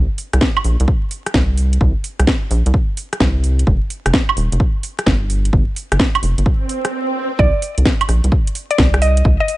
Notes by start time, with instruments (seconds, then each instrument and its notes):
0.18 open hi-hat
0.33 analog synth bass C2, cross-stick, closed hi-hat
0.41 kick, snare
0.57 high woodblock
0.64 analog synth bass A#1, open hi-hat
0.80 analog synth bass C2, closed hi-hat
0.88 kick
1.11 open hi-hat
1.26 cross-stick, closed hi-hat
1.34 analog synth bass C2, kick, snare
1.57 open hi-hat
1.73 closed hi-hat
1.81 analog synth bass C2, kick
2.04 open hi-hat
2.19 analog synth bass C2, cross-stick, closed hi-hat
2.27 kick, snare
2.51 analog synth bass A#1, open hi-hat
2.66 analog synth bass C2, closed hi-hat
2.74 kick
2.97 open hi-hat
3.13 cross-stick, closed hi-hat
3.20 analog synth bass C2, kick, snare
3.44 open hi-hat
3.59 closed hi-hat
3.67 analog synth bass F1, kick
3.90 open hi-hat
4.06 analog synth bass F1, cross-stick, closed hi-hat
4.13 kick, snare
4.29 high woodblock
4.37 analog synth bass D#1, open hi-hat
4.52 analog synth bass F1, closed hi-hat
4.60 kick
4.83 open hi-hat
4.99 cross-stick, closed hi-hat
5.06 analog synth bass G1, kick, snare
5.30 open hi-hat
5.45 closed hi-hat
5.53 analog synth bass G1, kick
5.76 open hi-hat
5.92 analog synth bass G1, cross-stick, closed hi-hat
5.99 kick, snare
6.15 closed hi-hat, high woodblock
6.23 analog synth bass F1, open hi-hat
6.38 analog synth bass G1, closed hi-hat
6.46 kick, swell
6.69 open hi-hat
6.85 cross-stick, closed hi-hat
7.39 analog synth bass C2, synth pluck D5, kick
7.62 open hi-hat
7.78 analog synth bass C2, closed hi-hat
7.85 kick, snare
8.01 closed hi-hat, high woodblock
8.09 analog synth bass A#1, cross-stick, open hi-hat
8.24 analog synth bass C2, closed hi-hat
8.32 kick
8.47 closed hi-hat
8.55 open hi-hat
8.71 synth pluck D5, closed hi-hat
8.78 analog synth bass C2, kick, snare
8.94 cross-stick, closed hi-hat
9.02 synth pluck D#5, open hi-hat
9.17 closed hi-hat
9.25 analog synth bass C2, kick
9.40 synth pluck D#5
9.48 open hi-hat